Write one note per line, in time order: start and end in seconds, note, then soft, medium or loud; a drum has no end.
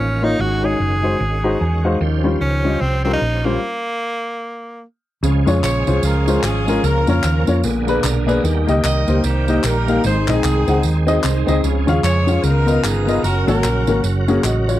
0.00 0.33 A1 medium
0.00 0.38 D#3 medium
0.00 0.37 A#3 medium
0.00 0.25 C#4 medium
0.00 1.97 C#4 medium
0.00 0.38 F4 medium
0.22 0.34 A#3 medium
0.22 0.34 D#4 medium
0.22 0.42 D#4 medium
0.22 0.34 F4 medium
0.22 0.35 C#5 medium
0.39 0.74 G#1 loud
0.39 1.00 G#2 medium
0.39 1.99 D#3 medium
0.39 1.99 G#3 medium
0.39 1.99 F#4 medium
0.39 0.66 F#4 medium
0.62 0.74 G#3 medium
0.62 0.74 D#4 medium
0.62 0.74 F#4 medium
0.62 1.85 G#4 medium
0.62 0.75 C#5 medium
0.80 1.14 F#1 medium
1.02 1.14 G#3 medium
1.02 1.15 D#4 medium
1.02 1.15 F#4 medium
1.02 1.15 C5 medium
1.20 1.55 G#1 medium
1.43 1.55 G#3 medium
1.43 1.55 D#4 medium
1.43 1.55 F#4 medium
1.43 1.56 C5 medium
1.43 1.59 A#5 medium
1.61 1.95 E2 medium
1.61 1.83 G#5 medium
1.84 1.95 G#3 medium
1.84 1.96 D#4 medium
1.84 1.96 F#4 medium
1.84 1.96 C5 medium
1.84 2.00 F5 medium
2.01 2.35 D#2 loud
2.01 2.61 D#3 medium
2.01 3.61 F3 medium
2.01 3.60 C#4 medium
2.01 3.61 G4 medium
2.01 3.60 C5 medium
2.24 2.35 G3 medium
2.24 2.35 C#4 medium
2.24 2.36 F4 medium
2.24 2.36 C5 medium
2.41 2.75 C#2 medium
2.41 2.82 C#4 medium
2.64 2.76 G3 medium
2.64 2.76 C#4 medium
2.64 2.76 F4 medium
2.64 2.77 D#5 medium
2.81 3.16 C2 medium
2.81 3.04 C4 loud
3.04 3.16 G3 medium
3.04 3.13 C4 medium
3.04 3.16 C#4 medium
3.04 3.17 F4 medium
3.04 3.17 A#4 medium
3.13 3.47 D#4 loud
3.22 3.56 A#1 medium
3.45 3.56 G3 medium
3.45 4.83 A#3 medium
3.45 3.57 C#4 medium
3.45 3.57 F4 medium
3.45 3.57 C5 medium
5.23 5.44 C#2 medium
5.23 5.83 C#3 medium
5.23 7.62 F3 medium
5.23 6.83 G#3 medium
5.23 7.62 C#4 medium
5.23 6.82 G#4 medium
5.23 tambourine medium
5.46 5.61 F2 medium
5.46 5.58 G#3 medium
5.46 5.58 C#4 medium
5.46 5.58 F4 medium
5.46 5.59 C#5 medium
5.46 tambourine medium
5.63 5.84 A#1 medium
5.63 6.03 F4 medium
5.63 6.40 G#4 medium
5.63 6.01 C#5 medium
5.63 clap medium
5.63 tambourine loud
5.86 6.01 C2 loud
5.86 5.98 G#3 medium
5.86 5.98 C#4 medium
5.86 5.98 F4 medium
5.86 5.99 C5 medium
5.86 tambourine medium
6.03 6.37 C#2 medium
6.03 6.43 C#4 medium
6.03 6.43 F4 medium
6.03 6.44 A#4 loud
6.03 tambourine medium
6.27 6.38 G#3 medium
6.27 6.38 C#4 medium
6.27 6.39 F4 medium
6.27 6.39 C5 medium
6.27 tambourine medium
6.43 6.77 G#1 medium
6.43 6.81 C#4 medium
6.43 6.81 F4 medium
6.43 6.84 G#4 medium
6.43 clap loud
6.43 tambourine loud
6.67 6.78 G#3 medium
6.67 6.79 C#4 medium
6.67 6.79 F4 medium
6.67 6.79 A#4 medium
6.67 tambourine medium
6.83 7.04 C#2 medium
6.83 7.44 C#3 medium
6.83 8.42 A#3 medium
6.83 7.07 C#4 medium
6.83 7.08 F4 medium
6.83 7.63 A#4 medium
6.83 7.09 A#4 loud
6.83 tambourine medium
7.07 7.21 F2 medium
7.07 7.18 A#3 medium
7.07 7.19 C#4 medium
7.07 7.61 C#4 medium
7.07 7.19 F4 medium
7.07 7.61 F4 medium
7.07 7.61 A#4 medium
7.07 7.19 C#5 medium
7.07 tambourine medium
7.23 7.44 D#2 loud
7.23 clap medium
7.23 tambourine medium
7.47 7.62 F2 medium
7.47 7.58 A#3 medium
7.47 7.59 C#4 medium
7.47 7.59 F4 medium
7.47 7.59 C#5 medium
7.47 tambourine medium
7.63 7.98 A#1 loud
7.63 8.24 A#2 medium
7.63 8.43 D3 medium
7.63 8.43 B3 medium
7.63 8.43 G#4 medium
7.63 tambourine medium
7.87 7.98 A#3 medium
7.87 7.99 D4 medium
7.87 8.03 D4 medium
7.87 7.99 G#4 medium
7.87 7.99 B4 loud
7.87 8.03 B4 medium
7.87 tambourine medium
8.03 8.38 B1 medium
8.03 8.27 D4 medium
8.03 8.27 A#4 medium
8.03 clap loud
8.03 tambourine medium
8.27 8.38 A#3 medium
8.27 8.66 B3 medium
8.27 8.38 D4 medium
8.27 8.66 G#4 medium
8.27 8.39 G#4 medium
8.27 8.39 B4 loud
8.27 tambourine medium
8.44 8.64 D#2 loud
8.44 9.04 D#3 medium
8.44 11.61 D#3 medium
8.44 10.02 G3 medium
8.44 10.03 A#3 medium
8.44 10.03 G4 medium
8.44 tambourine medium
8.67 8.82 C#2 medium
8.67 8.78 A#3 medium
8.67 8.79 D#4 medium
8.67 8.79 G4 medium
8.67 8.79 D#5 loud
8.67 tambourine soft
8.84 9.05 C2 medium
8.84 9.23 G4 medium
8.84 9.61 A#4 medium
8.84 9.21 D#5 medium
8.84 clap loud
8.84 tambourine medium
9.07 9.22 C#2 loud
9.07 9.19 A#3 medium
9.07 9.19 D#4 medium
9.07 9.19 G4 medium
9.07 9.19 C5 medium
9.07 tambourine medium
9.24 9.58 C2 loud
9.24 9.64 D#4 medium
9.24 9.64 G4 medium
9.24 9.64 C5 loud
9.24 tambourine medium
9.48 9.59 A#3 medium
9.48 9.59 D#4 medium
9.48 9.59 G4 medium
9.48 9.60 D#5 medium
9.48 tambourine medium
9.63 9.98 A#1 medium
9.63 10.02 D#4 medium
9.63 10.02 G4 medium
9.63 10.05 A#4 medium
9.63 clap loud
9.63 tambourine loud
9.88 9.99 A#3 medium
9.88 9.99 D#4 medium
9.88 9.99 G4 medium
9.88 10.00 F5 medium
9.88 tambourine medium
10.04 10.25 G#1 loud
10.04 10.64 G#2 medium
10.04 12.41 G#3 medium
10.04 11.62 C4 medium
10.04 10.29 D#4 medium
10.04 12.41 G#4 medium
10.04 10.29 G#4 medium
10.04 10.27 C5 medium
10.04 tambourine medium
10.28 10.42 A#1 medium
10.28 10.39 C4 medium
10.28 11.05 C4 medium
10.28 10.39 D#4 medium
10.28 11.05 D#4 medium
10.28 10.39 G#4 medium
10.28 10.85 G#4 medium
10.28 10.40 D#5 medium
10.28 clap medium
10.28 tambourine medium
10.44 10.65 C2 medium
10.44 clap medium
10.44 tambourine medium
10.67 10.82 C#2 loud
10.67 10.79 C4 medium
10.67 10.79 D#4 medium
10.67 10.79 G#4 medium
10.67 10.79 F#5 medium
10.67 tambourine medium
10.83 11.18 D#2 medium
10.83 tambourine medium
11.07 11.18 C4 loud
11.07 11.19 D#4 medium
11.07 11.24 F#4 medium
11.07 11.19 G#4 medium
11.07 11.23 D#5 medium
11.07 11.19 D#5 medium
11.07 tambourine medium
11.24 11.44 C2 medium
11.24 11.47 D#4 medium
11.24 11.47 C5 medium
11.24 clap loud
11.24 tambourine medium
11.47 11.61 C#2 medium
11.47 11.58 C4 loud
11.47 11.86 C4 medium
11.47 11.58 D#4 medium
11.47 11.59 G#4 medium
11.47 11.86 G#4 medium
11.47 11.59 D#5 loud
11.47 tambourine medium
11.64 11.84 C#2 medium
11.64 12.24 C#3 medium
11.64 12.43 F3 medium
11.64 12.43 C#4 medium
11.64 tambourine medium
11.87 12.01 D#2 medium
11.87 11.98 C#4 medium
11.87 11.99 F4 medium
11.87 11.99 G#4 medium
11.87 11.99 F5 loud
11.87 tambourine medium
12.03 12.37 F2 medium
12.03 12.42 F4 medium
12.03 12.42 G#4 medium
12.03 12.41 C#5 loud
12.03 clap medium
12.03 tambourine loud
12.27 12.38 C#4 medium
12.27 12.39 F4 medium
12.27 12.39 G#4 medium
12.27 12.39 F5 medium
12.27 tambourine soft
12.43 12.78 C#2 loud
12.43 13.04 C#3 medium
12.43 13.23 D#3 medium
12.43 13.23 B3 medium
12.43 13.20 D#4 medium
12.43 13.23 F4 medium
12.43 12.83 F4 medium
12.43 12.84 A#4 loud
12.43 14.79 A#4 medium
12.43 tambourine medium
12.66 12.78 B3 medium
12.66 12.78 F4 medium
12.66 12.79 A#4 medium
12.66 12.79 D#5 medium
12.66 tambourine medium
12.82 13.18 G1 medium
12.82 13.21 B3 medium
12.82 13.21 F4 medium
12.82 13.23 G#4 medium
12.82 clap loud
12.82 tambourine loud
13.07 13.18 B3 medium
13.07 13.19 F4 medium
13.07 13.19 A#4 medium
13.07 13.19 D#5 medium
13.07 tambourine medium
13.23 13.44 F#1 medium
13.23 14.79 C#3 medium
13.23 14.79 F#3 medium
13.23 13.48 C#4 medium
13.23 14.79 F#4 medium
13.23 13.48 F#4 medium
13.23 13.47 A#4 medium
13.23 tambourine medium
13.47 13.61 G#1 loud
13.47 13.58 A#3 medium
13.47 13.59 C#4 medium
13.47 14.24 C#4 medium
13.47 13.59 F#4 medium
13.47 14.24 F#4 medium
13.47 14.00 A#4 medium
13.47 13.59 C#5 medium
13.47 tambourine medium
13.63 13.84 A#1 loud
13.63 clap loud
13.63 tambourine loud
13.87 14.01 G#1 loud
13.87 13.99 A#3 medium
13.87 13.99 C#4 medium
13.87 13.99 F#4 medium
13.87 13.99 A#4 medium
13.87 tambourine medium
14.04 14.38 F#1 medium
14.04 tambourine medium
14.28 14.39 A#3 loud
14.28 14.39 C#4 medium
14.28 14.39 F#4 medium
14.28 14.39 G#4 loud
14.28 tambourine soft
14.44 14.78 A1 loud
14.44 14.68 F#4 medium
14.44 14.67 D#5 medium
14.44 clap medium
14.44 tambourine medium
14.68 14.79 F4 medium
14.68 14.79 C#5 medium
14.68 tambourine medium